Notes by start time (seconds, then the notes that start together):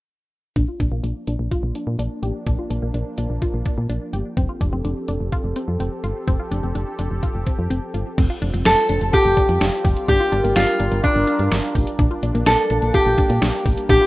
0.56 A#1 F3 A#3 D4, kick, closed hi-hat
0.68 F4
0.80 A#1 D4, kick, closed hi-hat
0.92 A#1 A#3
1.04 A#1 D4, closed hi-hat
1.27 A#1 D4, closed hi-hat
1.39 A#1
1.51 F4, kick, closed hi-hat
1.63 A#1
1.75 D4, closed hi-hat
1.87 A#2
1.99 A#1 D4, closed hi-hat
2.23 A1 G4, closed hi-hat
2.47 A#1 D4, kick, closed hi-hat
2.59 F4
2.70 A#1 D4, closed hi-hat
2.82 A#1 A#3
2.94 A#1 D4, closed hi-hat
3.18 A#1 D4, closed hi-hat
3.30 A#1
3.42 F4, kick, closed hi-hat
3.54 A#1
3.66 D4, kick, closed hi-hat
3.78 A#2
3.90 A#1 D4, closed hi-hat
4.13 G1 G4, closed hi-hat
4.37 F1 C4 G4 A4, kick, closed hi-hat
4.49 F4
4.61 F1 D4, kick, closed hi-hat
4.73 F1 C4
4.85 F1 D4, closed hi-hat
5.08 F1 D4, closed hi-hat
5.20 F1
5.32 F4, kick, closed hi-hat
5.44 F1
5.56 C4, closed hi-hat
5.68 F2
5.80 F1 C4, closed hi-hat
6.04 G1 F4, closed hi-hat
6.28 F1 C4, kick, closed hi-hat
6.40 F4
6.51 F1 D4, closed hi-hat
6.63 F1 C4
6.75 F1 D4, closed hi-hat
6.99 F1 D4, closed hi-hat
7.11 F1
7.23 F4, kick, closed hi-hat
7.35 F1
7.47 C4, kick, closed hi-hat
7.59 F2
7.70 F1 C4, closed hi-hat
7.94 G1 F4, closed hi-hat
8.18 F1 G3 C4 F4, kick, closed hi-hat, crash
8.30 F4
8.42 F1 D4, closed hi-hat
8.54 F1 C4, closed hi-hat
8.65 F1 D4 A4, snare, closed hi-hat
8.89 F1 D4, closed hi-hat
9.01 F1, closed hi-hat
9.13 F4 G4, kick, closed hi-hat
9.25 F1
9.37 D4, kick, closed hi-hat
9.49 F2, closed hi-hat
9.61 F1 D4, snare, closed hi-hat
9.84 F1 G4, kick, open hi-hat
9.97 closed hi-hat
10.08 G1 D4 G4 A#4, kick, closed hi-hat
10.20 F4
10.32 G1 D4, closed hi-hat
10.44 G1 A#3, closed hi-hat
10.56 G1 D4 F4, snare, closed hi-hat
10.80 G1 D4, closed hi-hat
10.92 G1, closed hi-hat
11.04 D4 F4, kick, closed hi-hat
11.16 G1
11.27 D4, closed hi-hat
11.39 G2, closed hi-hat
11.51 G1 D4, snare, closed hi-hat
11.75 A1 G4, kick, open hi-hat
11.87 closed hi-hat
11.99 A#1 A#3 D4, kick, closed hi-hat
12.11 F4
12.23 A#1 D4, closed hi-hat
12.35 A#1 A#3, closed hi-hat
12.46 A#1 D4 A4, snare, closed hi-hat
12.70 A#1 D4, closed hi-hat
12.82 A#1, closed hi-hat
12.94 F4 G4, kick, closed hi-hat
13.06 A#1
13.18 D4, kick, closed hi-hat
13.30 A#2, closed hi-hat
13.42 A#1 D4, snare, closed hi-hat
13.66 A1 G4, kick, open hi-hat
13.78 closed hi-hat
13.89 A#1 D4 G4, kick, closed hi-hat
14.01 F4